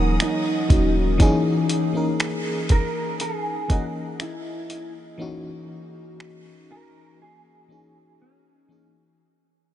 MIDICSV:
0, 0, Header, 1, 6, 480
1, 0, Start_track
1, 0, Tempo, 1000000
1, 575, Time_signature, 4, 2, 24, 8
1, 4676, End_track
2, 0, Start_track
2, 0, Title_t, "String section"
2, 0, Program_c, 0, 48
2, 0, Note_on_c, 0, 73, 73
2, 0, Note_on_c, 0, 78, 68
2, 0, Note_on_c, 0, 87, 81
2, 555, Note_off_c, 0, 73, 0
2, 556, Note_off_c, 0, 78, 0
2, 556, Note_off_c, 0, 87, 0
2, 4676, End_track
3, 0, Start_track
3, 0, Title_t, "Clean electric guitar"
3, 0, Program_c, 1, 27
3, 105, Note_on_c, 1, 63, 74
3, 441, Note_off_c, 1, 63, 0
3, 1304, Note_on_c, 1, 70, 101
3, 1540, Note_off_c, 1, 70, 0
3, 1542, Note_on_c, 1, 68, 90
3, 1782, Note_on_c, 1, 66, 84
3, 1786, Note_off_c, 1, 68, 0
3, 1846, Note_off_c, 1, 66, 0
3, 2024, Note_on_c, 1, 64, 71
3, 2360, Note_off_c, 1, 64, 0
3, 3223, Note_on_c, 1, 70, 99
3, 3463, Note_off_c, 1, 70, 0
3, 3465, Note_on_c, 1, 68, 89
3, 3921, Note_off_c, 1, 68, 0
3, 3943, Note_on_c, 1, 61, 70
3, 4280, Note_off_c, 1, 61, 0
3, 4676, End_track
4, 0, Start_track
4, 0, Title_t, "FM electric piano"
4, 0, Program_c, 2, 5
4, 0, Control_c, 2, 64, 127
4, 0, Note_on_c, 2, 52, 54
4, 0, Note_on_c, 2, 54, 68
4, 0, Note_on_c, 2, 58, 64
4, 0, Note_on_c, 2, 61, 63
4, 0, Note_on_c, 2, 63, 63
4, 0, Note_on_c, 2, 70, 78
4, 253, Note_off_c, 2, 58, 0
4, 255, Note_off_c, 2, 61, 0
4, 258, Note_off_c, 2, 63, 0
4, 260, Note_off_c, 2, 70, 0
4, 266, Note_off_c, 2, 54, 0
4, 327, Note_on_c, 2, 54, 66
4, 332, Note_on_c, 2, 58, 57
4, 338, Note_on_c, 2, 61, 58
4, 342, Note_on_c, 2, 63, 55
4, 347, Note_on_c, 2, 66, 72
4, 531, Note_off_c, 2, 54, 0
4, 533, Note_off_c, 2, 58, 0
4, 536, Note_off_c, 2, 61, 0
4, 538, Note_off_c, 2, 63, 0
4, 541, Note_off_c, 2, 66, 0
4, 566, Note_off_c, 2, 52, 0
4, 566, Note_on_c, 2, 52, 109
4, 572, Note_on_c, 2, 58, 95
4, 576, Note_on_c, 2, 61, 101
4, 580, Control_c, 2, 64, 0
4, 581, Note_on_c, 2, 63, 101
4, 586, Note_on_c, 2, 68, 118
4, 671, Control_c, 2, 64, 127
4, 870, Note_off_c, 2, 52, 0
4, 873, Note_off_c, 2, 58, 0
4, 875, Note_off_c, 2, 61, 0
4, 878, Note_off_c, 2, 63, 0
4, 880, Note_off_c, 2, 68, 0
4, 926, Note_on_c, 2, 52, 70
4, 930, Note_on_c, 2, 58, 68
4, 935, Note_on_c, 2, 61, 63
4, 939, Note_on_c, 2, 63, 66
4, 945, Note_on_c, 2, 70, 84
4, 1630, Note_off_c, 2, 52, 0
4, 1632, Note_off_c, 2, 58, 0
4, 1634, Note_off_c, 2, 61, 0
4, 1636, Note_off_c, 2, 63, 0
4, 1639, Note_off_c, 2, 70, 0
4, 1766, Note_on_c, 2, 52, 67
4, 1771, Note_on_c, 2, 58, 64
4, 1776, Note_on_c, 2, 61, 61
4, 1781, Note_on_c, 2, 75, 62
4, 1786, Note_on_c, 2, 70, 76
4, 2370, Note_off_c, 2, 52, 0
4, 2372, Note_off_c, 2, 58, 0
4, 2375, Note_off_c, 2, 61, 0
4, 2377, Note_off_c, 2, 75, 0
4, 2380, Note_off_c, 2, 70, 0
4, 2485, Note_on_c, 2, 52, 103
4, 2490, Note_on_c, 2, 58, 96
4, 2494, Note_on_c, 2, 61, 96
4, 2499, Note_on_c, 2, 63, 99
4, 2504, Note_on_c, 2, 66, 115
4, 3289, Note_off_c, 2, 52, 0
4, 3292, Note_off_c, 2, 58, 0
4, 3294, Note_off_c, 2, 61, 0
4, 3296, Note_off_c, 2, 63, 0
4, 3299, Note_off_c, 2, 66, 0
4, 3687, Note_on_c, 2, 52, 66
4, 3691, Note_on_c, 2, 58, 60
4, 3696, Note_on_c, 2, 61, 59
4, 3701, Note_on_c, 2, 63, 61
4, 3707, Note_on_c, 2, 68, 71
4, 4091, Note_off_c, 2, 52, 0
4, 4093, Note_off_c, 2, 58, 0
4, 4095, Note_off_c, 2, 61, 0
4, 4097, Note_off_c, 2, 63, 0
4, 4100, Note_off_c, 2, 68, 0
4, 4168, Note_on_c, 2, 52, 64
4, 4172, Note_on_c, 2, 58, 59
4, 4177, Note_on_c, 2, 61, 53
4, 4182, Note_on_c, 2, 63, 54
4, 4186, Note_on_c, 2, 68, 66
4, 4371, Note_off_c, 2, 52, 0
4, 4373, Note_off_c, 2, 58, 0
4, 4376, Note_off_c, 2, 61, 0
4, 4378, Note_off_c, 2, 63, 0
4, 4380, Note_off_c, 2, 68, 0
4, 4422, Control_c, 2, 64, 0
4, 4676, End_track
5, 0, Start_track
5, 0, Title_t, "808-style bass"
5, 0, Program_c, 3, 38
5, 0, Note_on_c, 3, 27, 102
5, 86, Note_off_c, 3, 27, 0
5, 335, Note_on_c, 3, 27, 100
5, 566, Note_off_c, 3, 27, 0
5, 4676, End_track
6, 0, Start_track
6, 0, Title_t, "Drums"
6, 96, Note_on_c, 9, 26, 94
6, 97, Note_on_c, 9, 42, 64
6, 144, Note_off_c, 9, 26, 0
6, 145, Note_off_c, 9, 42, 0
6, 335, Note_on_c, 9, 36, 93
6, 337, Note_on_c, 9, 42, 61
6, 383, Note_off_c, 9, 36, 0
6, 385, Note_off_c, 9, 42, 0
6, 575, Note_on_c, 9, 36, 107
6, 575, Note_on_c, 9, 42, 66
6, 623, Note_off_c, 9, 36, 0
6, 623, Note_off_c, 9, 42, 0
6, 813, Note_on_c, 9, 42, 72
6, 861, Note_off_c, 9, 42, 0
6, 1055, Note_on_c, 9, 42, 64
6, 1057, Note_on_c, 9, 26, 111
6, 1103, Note_off_c, 9, 42, 0
6, 1105, Note_off_c, 9, 26, 0
6, 1292, Note_on_c, 9, 42, 57
6, 1295, Note_on_c, 9, 36, 85
6, 1340, Note_off_c, 9, 42, 0
6, 1343, Note_off_c, 9, 36, 0
6, 1535, Note_on_c, 9, 42, 53
6, 1583, Note_off_c, 9, 42, 0
6, 1774, Note_on_c, 9, 36, 93
6, 1775, Note_on_c, 9, 42, 67
6, 1822, Note_off_c, 9, 36, 0
6, 1823, Note_off_c, 9, 42, 0
6, 2015, Note_on_c, 9, 26, 91
6, 2016, Note_on_c, 9, 42, 65
6, 2063, Note_off_c, 9, 26, 0
6, 2064, Note_off_c, 9, 42, 0
6, 2255, Note_on_c, 9, 42, 57
6, 2303, Note_off_c, 9, 42, 0
6, 2977, Note_on_c, 9, 26, 107
6, 3025, Note_off_c, 9, 26, 0
6, 4676, End_track
0, 0, End_of_file